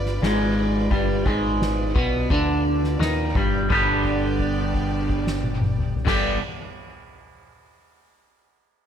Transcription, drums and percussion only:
0.06 snare soft
0.22 snare loud
0.22 ride loud
0.57 ride medium
0.91 kick medium
0.91 ride medium
1.26 kick medium
1.26 ride medium
1.61 snare loud
1.61 ride medium
1.96 kick loud
1.96 ride medium
2.30 kick loud
2.30 ride medium
2.66 ride medium
2.84 snare soft
3.01 snare loud
3.01 ride loud
3.35 kick loud
3.35 ride medium
3.70 kick medium
3.70 crash medium
4.05 kick medium
4.05 crash soft
4.23 crash soft
4.40 kick medium
4.40 crash soft
4.58 crash medium
4.74 kick medium
4.74 crash medium
4.92 crash medium
5.09 kick medium
5.09 crash medium
5.27 snare medium
5.44 high tom loud
5.62 mid tom loud
5.79 mid tom loud
5.96 floor tom loud
6.07 kick loud
6.07 snare loud
6.07 crash loud

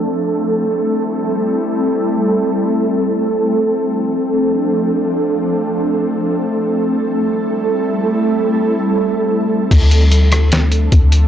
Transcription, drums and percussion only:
9.71 kick loud
9.71 closed hi-hat medium
9.71 crash loud
9.91 closed hi-hat medium
10.12 closed hi-hat medium
10.32 cross-stick medium
10.32 closed hi-hat medium
10.52 snare loud
10.52 closed hi-hat medium
10.72 closed hi-hat medium
10.92 kick loud
10.92 closed hi-hat medium
11.12 closed hi-hat medium

